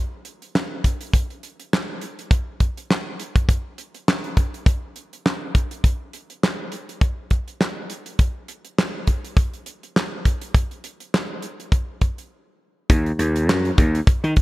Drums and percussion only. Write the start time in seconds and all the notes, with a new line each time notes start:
0.25 closed hi-hat
0.42 closed hi-hat
0.55 snare, clap
0.84 kick, closed hi-hat
1.01 closed hi-hat
1.14 kick, closed hi-hat
1.30 closed hi-hat
1.43 closed hi-hat
1.60 closed hi-hat
1.73 snare, clap
2.01 closed hi-hat
2.19 closed hi-hat
2.31 kick, closed hi-hat
2.60 kick, closed hi-hat
2.77 closed hi-hat
2.91 snare, clap
3.20 closed hi-hat
3.36 kick, closed hi-hat
3.49 kick, closed hi-hat
3.78 closed hi-hat
3.95 closed hi-hat
4.08 snare, clap
4.24 closed hi-hat
4.37 kick, closed hi-hat
4.54 closed hi-hat
4.66 kick, closed hi-hat
4.96 closed hi-hat
5.13 closed hi-hat
5.26 snare, clap
5.55 kick, closed hi-hat
5.71 closed hi-hat
5.84 kick, closed hi-hat
6.13 closed hi-hat
6.30 closed hi-hat
6.43 snare, clap
6.72 closed hi-hat
6.89 closed hi-hat
7.01 kick, closed hi-hat
7.30 kick, closed hi-hat
7.48 closed hi-hat
7.61 snare, clap
7.90 closed hi-hat
8.06 closed hi-hat
8.19 kick, closed hi-hat
8.48 closed hi-hat
8.65 closed hi-hat
8.79 snare, clap
9.07 kick, closed hi-hat
9.25 closed hi-hat
9.37 kick, closed hi-hat
9.54 closed hi-hat
9.66 closed hi-hat
9.83 closed hi-hat
9.96 snare, clap
10.25 kick, closed hi-hat
10.41 closed hi-hat
10.55 kick, closed hi-hat
10.71 closed hi-hat
10.84 closed hi-hat
11.00 closed hi-hat
11.14 snare, clap
11.42 closed hi-hat
11.60 closed hi-hat
11.72 kick, closed hi-hat
12.01 kick, closed hi-hat
12.18 closed hi-hat
12.90 kick, closed hi-hat
13.06 closed hi-hat
13.19 closed hi-hat
13.36 closed hi-hat
13.49 snare, clap
13.65 closed hi-hat
13.78 kick, closed hi-hat
13.95 closed hi-hat
14.07 kick, closed hi-hat
14.24 closed hi-hat
14.36 kick, closed hi-hat